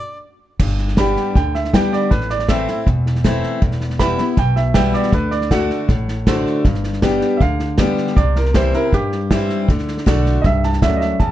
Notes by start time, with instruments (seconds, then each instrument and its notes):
Already playing: harmonica D5
0.59 upright bass G1, steel-string acoustic guitar G2, kick, snare, crash
0.79 snare
0.88 snare
0.97 steel-string acoustic guitar G3 B3 D4 G4, grand piano G4 B4 D5, upright piano B5, kick, snare, hi-hat pedal
1.16 snare
1.35 upright bass D2, steel-string acoustic guitar D3, upright piano G5, kick, snare
1.55 upright piano E5, snare
1.65 snare
1.73 steel-string acoustic guitar G3 B3 D4 G4, grand piano G4 B4 D5, upright piano G5, kick, snare, hi-hat pedal
1.93 upright piano D5, snare
2.11 upright bass A1, steel-string acoustic guitar A2, upright piano B4, kick, snare
2.21 snare
2.30 upright piano D5, snare
2.39 snare
2.48 steel-string acoustic guitar E3 A3 C4 E4, grand piano A4 C5 E5, upright piano E5, kick, snare, hi-hat pedal
2.68 steel-string acoustic guitar C4 E4, snare
2.87 upright bass E1, steel-string acoustic guitar E2, kick, snare
3.06 snare
3.16 snare
3.24 steel-string acoustic guitar E3 A3 C4 E4, grand piano A4 C5 E5, kick, snare, hi-hat pedal
3.43 snare
3.61 upright bass E1, steel-string acoustic guitar E2, kick, snare
3.71 snare
3.81 snare
3.90 snare
3.99 steel-string acoustic guitar E3 G3 B3 E4, grand piano G4 B4 E5, upright piano B5, kick, snare, hi-hat pedal
4.18 steel-string acoustic guitar B3 E4, snare
4.37 upright bass B1, steel-string acoustic guitar B2, upright piano G5, kick, snare
4.56 upright piano E5, snare
4.74 steel-string acoustic guitar E3 G3 B3 E4, grand piano G4 B4 E5, upright piano G5, kick, snare, hi-hat pedal
4.93 upright piano D5, snare
5.03 snare
5.12 upright bass D2, steel-string acoustic guitar D3, upright piano B4, kick, snare
5.31 upright piano D5, snare
5.41 snare
5.51 steel-string acoustic guitar D3 A3 D4 F#4, grand piano F#4 A4 D5, upright piano F#5, kick, snare, hi-hat pedal
5.70 snare
5.89 upright bass A1, steel-string acoustic guitar A2, kick, snare
6.08 snare
6.27 steel-string acoustic guitar D3 A3 D4 F#4, grand piano F#4 A4 C5, kick, snare, hi-hat pedal
6.46 snare
6.64 upright bass G1, steel-string acoustic guitar G2, kick, snare
6.74 snare
6.84 snare
6.93 snare
7.02 steel-string acoustic guitar G3 B3 D4 G4, grand piano G4 B4 D5, kick, snare, hi-hat pedal
7.21 snare
7.37 upright bass D2, upright piano E5, kick, snare
7.41 steel-string acoustic guitar D3, upright piano F5
7.59 snare
7.78 steel-string acoustic guitar G3 B3 D4 G4, grand piano G4 B4 D5, kick, snare, hi-hat pedal
7.97 snare
8.07 snare
8.16 upright bass C2, steel-string acoustic guitar C3, upright piano D5, kick, snare
8.36 upright piano A#4, snare
8.45 snare
8.54 steel-string acoustic guitar E3 G3 C4 E4, grand piano G4 C5 E5, upright piano C5, kick, snare, hi-hat pedal
8.74 steel-string acoustic guitar C4 E4, upright piano A#4, snare
8.92 upright bass G2, steel-string acoustic guitar G2, upright piano G4, kick, snare
9.12 snare
9.30 steel-string acoustic guitar E3 G3 C4 E4, grand piano G4 C5 E5, kick, snare, hi-hat pedal
9.50 snare
9.69 upright bass D2, steel-string acoustic guitar D3, kick, snare
9.78 snare
9.88 snare
9.98 snare
10.06 upright bass B1, steel-string acoustic guitar D3 A3 D4 F#4, grand piano F#4 A4 D5, kick, snare, hi-hat pedal
10.26 snare
10.42 upright bass C2, steel-string acoustic guitar G2, upright piano D#5, kick, snare
10.46 upright piano E5
10.63 upright piano A5, snare
10.73 snare
10.82 upright bass D2, steel-string acoustic guitar F#2, grand piano F#4 A4 D5, upright piano E5, kick, snare, hi-hat pedal
10.96 upright piano D#5
11.01 upright piano E5, snare
11.19 upright bass E2, steel-string acoustic guitar E2, upright piano A5, kick, snare